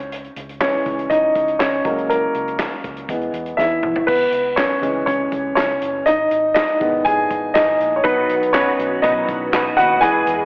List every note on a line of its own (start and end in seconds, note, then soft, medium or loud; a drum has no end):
0.00 0.28 C#2 medium
0.00 closed hi-hat soft
0.12 closed hi-hat medium
0.24 closed hi-hat soft
0.36 0.67 C#2 medium
0.36 closed hi-hat medium
0.49 closed hi-hat soft
0.60 0.94 E3 soft
0.60 0.95 G#3 soft
0.60 1.08 C#4 medium
0.60 1.12 C#5 medium
0.60 snare medium
0.60 clap medium
0.86 1.06 C#2 medium
0.86 kick medium
0.86 closed hi-hat medium
0.99 closed hi-hat soft
1.10 1.31 C#2 medium
1.10 1.57 D#4 medium
1.10 1.61 D#5 medium
1.10 kick medium
1.10 closed hi-hat medium
1.35 1.56 C#2 medium
1.35 kick medium
1.35 closed hi-hat medium
1.48 closed hi-hat soft
1.59 1.81 C#2 medium
1.59 2.07 C#4 medium
1.59 2.06 C#5 medium
1.59 snare medium
1.59 clap medium
1.85 2.26 C#2 medium
1.85 2.18 F#3 soft
1.85 2.18 G#3 soft
1.85 2.09 A#3 medium
1.85 kick medium
1.85 closed hi-hat medium
1.98 closed hi-hat soft
2.09 3.06 A#3 medium
2.09 3.05 A#4 medium
2.09 closed hi-hat medium
2.34 2.65 C#2 medium
2.34 closed hi-hat medium
2.48 closed hi-hat soft
2.59 snare loud
2.59 clap medium
2.84 3.04 C#2 medium
2.84 kick medium
2.84 closed hi-hat medium
2.97 closed hi-hat soft
3.09 3.29 E2 medium
3.09 3.80 E3 soft
3.09 3.80 G#3 soft
3.09 3.80 B3 soft
3.09 kick medium
3.09 closed hi-hat medium
3.21 closed hi-hat soft
3.33 3.54 E2 medium
3.33 closed hi-hat medium
3.46 closed hi-hat soft
3.57 3.78 E2 medium
3.57 4.05 E4 medium
3.57 4.09 E5 medium
3.57 snare soft
3.83 4.03 B1 medium
3.83 mid tom medium
3.96 floor tom medium
4.07 4.29 C#2 medium
4.07 4.55 B3 medium
4.07 4.59 B4 medium
4.07 kick loud
4.07 crash medium
4.32 4.63 C#2 medium
4.32 closed hi-hat medium
4.56 4.81 C#4 medium
4.56 5.05 C#5 medium
4.56 snare medium
4.56 clap medium
4.56 closed hi-hat medium
4.81 5.02 C#2 medium
4.81 5.15 E3 medium
4.81 5.15 G#3 soft
4.81 5.06 C#4 medium
4.81 closed hi-hat medium
5.06 5.28 C#2 medium
5.06 5.54 C#4 medium
5.06 5.53 C#5 medium
5.06 kick medium
5.06 closed hi-hat medium
5.32 5.52 C#2 medium
5.32 kick medium
5.32 closed hi-hat medium
5.55 5.77 C#2 medium
5.55 6.04 C#4 medium
5.55 6.07 C#5 medium
5.55 snare medium
5.55 clap medium
5.55 closed hi-hat medium
5.82 6.02 F#1 medium
5.82 closed hi-hat medium
6.06 6.27 G#1 medium
6.06 6.53 D#4 medium
6.06 6.53 D#5 loud
6.06 closed hi-hat medium
6.31 6.61 G#1 medium
6.31 closed hi-hat medium
6.54 7.02 D#4 medium
6.54 7.06 D#5 loud
6.54 snare loud
6.54 clap medium
6.54 closed hi-hat medium
6.80 7.01 G#1 medium
6.80 7.51 D#3 medium
6.80 7.51 G#3 soft
6.80 7.52 B3 medium
6.80 kick medium
6.80 closed hi-hat medium
7.05 7.26 G#1 loud
7.05 7.52 G#4 medium
7.05 7.56 G#5 medium
7.05 kick medium
7.05 closed hi-hat loud
7.31 7.51 G#1 medium
7.31 kick medium
7.31 closed hi-hat medium
7.54 7.76 G#1 medium
7.54 7.95 D#4 medium
7.54 7.98 D#5 medium
7.54 snare loud
7.54 clap medium
7.54 closed hi-hat medium
7.80 8.00 A#1 medium
7.80 closed hi-hat medium
7.96 8.04 C#5 medium
8.04 8.25 B1 medium
8.04 8.54 B2 medium
8.04 8.75 D#3 medium
8.04 8.54 F#3 medium
8.04 8.75 F#3 soft
8.04 8.53 B3 medium
8.04 8.76 B3 medium
8.04 8.53 D#4 medium
8.04 8.53 F#4 medium
8.04 8.55 B4 medium
8.04 kick loud
8.04 closed hi-hat medium
8.29 8.60 B1 medium
8.29 closed hi-hat medium
8.43 closed hi-hat medium
8.53 9.03 B3 medium
8.53 9.01 C#4 medium
8.53 9.02 D#4 medium
8.53 9.03 F#4 medium
8.53 9.03 B4 medium
8.53 9.05 C#5 medium
8.53 snare medium
8.53 clap medium
8.53 closed hi-hat medium
8.79 8.99 B1 loud
8.79 closed hi-hat medium
9.02 9.24 B1 loud
9.02 9.53 B2 medium
9.02 9.26 D#3 soft
9.02 9.53 F#3 medium
9.02 9.26 F#3 soft
9.02 9.52 B3 medium
9.02 9.26 B3 soft
9.02 9.52 D#4 medium
9.02 9.74 D#4 medium
9.02 9.52 F#4 medium
9.02 9.54 B4 medium
9.02 9.73 D#5 medium
9.02 kick loud
9.02 closed hi-hat loud
9.29 9.49 B1 medium
9.29 kick medium
9.29 closed hi-hat medium
9.52 9.74 B1 medium
9.52 9.77 B3 medium
9.52 9.77 D#4 medium
9.52 9.76 F#4 medium
9.52 9.76 B4 medium
9.52 snare medium
9.52 clap medium
9.52 closed hi-hat medium
9.77 9.98 D#2 medium
9.77 10.00 B3 soft
9.77 10.02 D#4 soft
9.77 10.02 F#4 medium
9.77 10.01 F#4 medium
9.77 10.01 B4 medium
9.77 10.03 F#5 medium
9.77 closed hi-hat medium
10.01 10.23 E2 medium
10.01 10.35 E3 medium
10.01 10.45 E3 medium
10.01 10.35 G#3 medium
10.01 10.45 G#3 medium
10.01 10.45 B3 medium
10.01 10.35 B3 medium
10.01 10.45 G#4 medium
10.01 10.45 B4 medium
10.01 10.45 G#5 medium
10.01 closed hi-hat medium
10.27 10.45 E2 medium
10.27 closed hi-hat medium